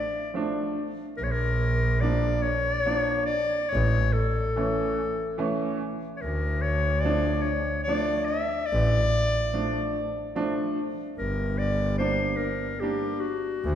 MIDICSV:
0, 0, Header, 1, 4, 480
1, 0, Start_track
1, 0, Key_signature, -1, "minor"
1, 0, Tempo, 839161
1, 676, Time_signature, 3, 2, 24, 8
1, 4029, Tempo, 823045
1, 7940, End_track
2, 0, Start_track
2, 0, Title_t, "Clarinet"
2, 0, Program_c, 0, 71
2, 0, Note_on_c, 0, 74, 102
2, 198, Note_off_c, 0, 74, 0
2, 670, Note_on_c, 0, 70, 87
2, 706, Note_on_c, 0, 73, 70
2, 715, Note_off_c, 0, 70, 0
2, 750, Note_on_c, 0, 70, 108
2, 759, Note_off_c, 0, 73, 0
2, 1146, Note_on_c, 0, 74, 92
2, 1155, Note_off_c, 0, 70, 0
2, 1386, Note_on_c, 0, 73, 102
2, 1394, Note_off_c, 0, 74, 0
2, 1860, Note_off_c, 0, 73, 0
2, 1863, Note_on_c, 0, 74, 104
2, 2109, Note_on_c, 0, 73, 103
2, 2118, Note_off_c, 0, 74, 0
2, 2362, Note_on_c, 0, 69, 85
2, 2371, Note_off_c, 0, 73, 0
2, 3318, Note_off_c, 0, 69, 0
2, 3527, Note_on_c, 0, 73, 59
2, 3553, Note_on_c, 0, 70, 83
2, 3562, Note_off_c, 0, 73, 0
2, 3783, Note_on_c, 0, 73, 97
2, 3792, Note_off_c, 0, 70, 0
2, 4007, Note_on_c, 0, 74, 94
2, 4015, Note_off_c, 0, 73, 0
2, 4247, Note_on_c, 0, 73, 80
2, 4256, Note_off_c, 0, 74, 0
2, 4483, Note_off_c, 0, 73, 0
2, 4487, Note_on_c, 0, 74, 100
2, 4733, Note_on_c, 0, 76, 98
2, 4742, Note_off_c, 0, 74, 0
2, 4973, Note_on_c, 0, 74, 113
2, 4981, Note_off_c, 0, 76, 0
2, 5948, Note_off_c, 0, 74, 0
2, 6441, Note_on_c, 0, 70, 83
2, 6675, Note_on_c, 0, 74, 94
2, 6684, Note_off_c, 0, 70, 0
2, 6907, Note_off_c, 0, 74, 0
2, 6910, Note_on_c, 0, 72, 92
2, 7132, Note_on_c, 0, 70, 85
2, 7141, Note_off_c, 0, 72, 0
2, 7385, Note_on_c, 0, 67, 84
2, 7394, Note_off_c, 0, 70, 0
2, 7620, Note_on_c, 0, 66, 82
2, 7629, Note_off_c, 0, 67, 0
2, 7940, Note_off_c, 0, 66, 0
2, 7940, End_track
3, 0, Start_track
3, 0, Title_t, "Upright piano"
3, 0, Program_c, 1, 0
3, 194, Note_on_c, 1, 53, 62
3, 198, Note_on_c, 1, 57, 62
3, 205, Note_on_c, 1, 62, 73
3, 435, Note_off_c, 1, 53, 0
3, 437, Note_off_c, 1, 57, 0
3, 441, Note_off_c, 1, 62, 0
3, 1154, Note_on_c, 1, 53, 62
3, 1159, Note_on_c, 1, 58, 57
3, 1161, Note_on_c, 1, 62, 69
3, 1398, Note_off_c, 1, 53, 0
3, 1400, Note_off_c, 1, 58, 0
3, 1401, Note_off_c, 1, 62, 0
3, 1634, Note_on_c, 1, 53, 61
3, 1636, Note_on_c, 1, 58, 64
3, 1640, Note_on_c, 1, 62, 73
3, 1878, Note_off_c, 1, 53, 0
3, 1879, Note_off_c, 1, 58, 0
3, 1881, Note_off_c, 1, 62, 0
3, 2609, Note_on_c, 1, 52, 69
3, 2612, Note_on_c, 1, 57, 54
3, 2614, Note_on_c, 1, 61, 72
3, 2844, Note_off_c, 1, 52, 0
3, 2846, Note_off_c, 1, 57, 0
3, 2847, Note_off_c, 1, 61, 0
3, 3077, Note_on_c, 1, 52, 78
3, 3081, Note_on_c, 1, 57, 80
3, 3083, Note_on_c, 1, 61, 77
3, 3316, Note_off_c, 1, 52, 0
3, 3319, Note_off_c, 1, 57, 0
3, 3319, Note_off_c, 1, 61, 0
3, 4029, Note_on_c, 1, 53, 71
3, 4033, Note_on_c, 1, 62, 76
3, 4035, Note_on_c, 1, 57, 57
3, 4272, Note_off_c, 1, 53, 0
3, 4274, Note_off_c, 1, 62, 0
3, 4275, Note_off_c, 1, 57, 0
3, 4513, Note_on_c, 1, 53, 62
3, 4521, Note_on_c, 1, 57, 66
3, 4522, Note_on_c, 1, 62, 77
3, 4756, Note_off_c, 1, 53, 0
3, 4759, Note_off_c, 1, 57, 0
3, 4760, Note_off_c, 1, 62, 0
3, 5480, Note_on_c, 1, 57, 59
3, 5481, Note_on_c, 1, 53, 61
3, 5483, Note_on_c, 1, 62, 66
3, 5720, Note_off_c, 1, 57, 0
3, 5721, Note_off_c, 1, 53, 0
3, 5722, Note_off_c, 1, 62, 0
3, 5960, Note_on_c, 1, 53, 73
3, 5963, Note_on_c, 1, 57, 66
3, 5964, Note_on_c, 1, 62, 88
3, 6200, Note_off_c, 1, 53, 0
3, 6202, Note_off_c, 1, 57, 0
3, 6202, Note_off_c, 1, 62, 0
3, 6916, Note_on_c, 1, 55, 62
3, 6916, Note_on_c, 1, 58, 62
3, 6920, Note_on_c, 1, 62, 68
3, 7156, Note_off_c, 1, 55, 0
3, 7157, Note_off_c, 1, 58, 0
3, 7159, Note_off_c, 1, 62, 0
3, 7394, Note_on_c, 1, 55, 63
3, 7398, Note_on_c, 1, 58, 55
3, 7400, Note_on_c, 1, 62, 71
3, 7634, Note_off_c, 1, 55, 0
3, 7636, Note_off_c, 1, 58, 0
3, 7637, Note_off_c, 1, 62, 0
3, 7940, End_track
4, 0, Start_track
4, 0, Title_t, "Double bass"
4, 0, Program_c, 2, 43
4, 675, Note_on_c, 2, 34, 104
4, 1543, Note_off_c, 2, 34, 0
4, 2127, Note_on_c, 2, 33, 119
4, 2270, Note_off_c, 2, 33, 0
4, 3561, Note_on_c, 2, 38, 92
4, 4421, Note_off_c, 2, 38, 0
4, 5003, Note_on_c, 2, 33, 111
4, 5146, Note_off_c, 2, 33, 0
4, 6440, Note_on_c, 2, 31, 92
4, 7301, Note_off_c, 2, 31, 0
4, 7875, Note_on_c, 2, 38, 103
4, 7940, Note_off_c, 2, 38, 0
4, 7940, End_track
0, 0, End_of_file